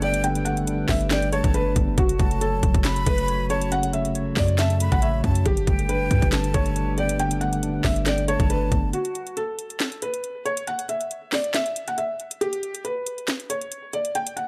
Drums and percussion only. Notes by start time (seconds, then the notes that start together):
0.02 closed hi-hat
0.14 closed hi-hat
0.24 closed hi-hat
0.35 closed hi-hat
0.46 closed hi-hat
0.57 closed hi-hat
0.67 closed hi-hat
0.89 kick, snare, clap, open hi-hat
1.01 closed hi-hat
1.11 snare, clap, closed hi-hat
1.22 closed hi-hat
1.33 closed hi-hat
1.44 kick, closed hi-hat
1.54 closed hi-hat
1.76 kick, closed hi-hat
1.98 kick, closed hi-hat
2.09 closed hi-hat
2.19 kick, closed hi-hat
2.31 closed hi-hat
2.41 closed hi-hat
2.63 kick, closed hi-hat
2.74 kick, closed hi-hat
2.85 snare, clap, closed hi-hat
2.96 closed hi-hat
3.06 kick, closed hi-hat
3.18 closed hi-hat
3.28 closed hi-hat
3.50 closed hi-hat
3.62 closed hi-hat
3.72 closed hi-hat
3.83 closed hi-hat
3.93 closed hi-hat
4.05 closed hi-hat
4.15 closed hi-hat
4.37 kick, snare, clap, open hi-hat
4.48 closed hi-hat
4.59 snare, clap, closed hi-hat
4.70 closed hi-hat
4.80 closed hi-hat
4.92 kick, closed hi-hat
5.02 closed hi-hat
5.24 kick, closed hi-hat
5.35 closed hi-hat
5.46 kick, closed hi-hat
5.57 closed hi-hat
5.67 kick, closed hi-hat
5.79 closed hi-hat
5.89 closed hi-hat
6.11 kick, closed hi-hat
6.22 kick, closed hi-hat
6.32 snare, clap, closed hi-hat
6.44 closed hi-hat
6.54 kick, closed hi-hat
6.66 closed hi-hat
6.76 closed hi-hat
6.98 closed hi-hat
7.09 closed hi-hat
7.19 closed hi-hat
7.31 closed hi-hat
7.41 closed hi-hat
7.53 closed hi-hat
7.63 closed hi-hat
7.85 kick, snare, clap, open hi-hat
7.96 closed hi-hat
8.06 snare, clap, closed hi-hat
8.18 closed hi-hat
8.28 closed hi-hat
8.40 kick, closed hi-hat
8.50 closed hi-hat
8.72 kick, closed hi-hat
8.93 closed hi-hat
9.05 closed hi-hat
9.15 closed hi-hat
9.27 closed hi-hat
9.37 closed hi-hat
9.59 closed hi-hat
9.70 closed hi-hat
9.80 snare, clap, closed hi-hat
9.92 closed hi-hat
10.02 closed hi-hat
10.14 closed hi-hat
10.24 closed hi-hat
10.46 closed hi-hat
10.57 closed hi-hat
10.67 closed hi-hat
10.79 closed hi-hat
10.89 closed hi-hat
11.01 closed hi-hat
11.11 closed hi-hat
11.32 snare, clap, open hi-hat
11.44 closed hi-hat
11.54 snare, clap, closed hi-hat
11.66 closed hi-hat
11.76 closed hi-hat
11.88 closed hi-hat
11.98 closed hi-hat
12.20 closed hi-hat
12.31 closed hi-hat
12.41 closed hi-hat
12.53 closed hi-hat
12.63 closed hi-hat
12.75 closed hi-hat
12.85 closed hi-hat
13.07 closed hi-hat
13.18 closed hi-hat
13.28 snare, clap, closed hi-hat
13.40 closed hi-hat
13.50 closed hi-hat
13.61 closed hi-hat
13.72 closed hi-hat
13.93 closed hi-hat
14.05 closed hi-hat
14.15 closed hi-hat
14.27 closed hi-hat
14.37 closed hi-hat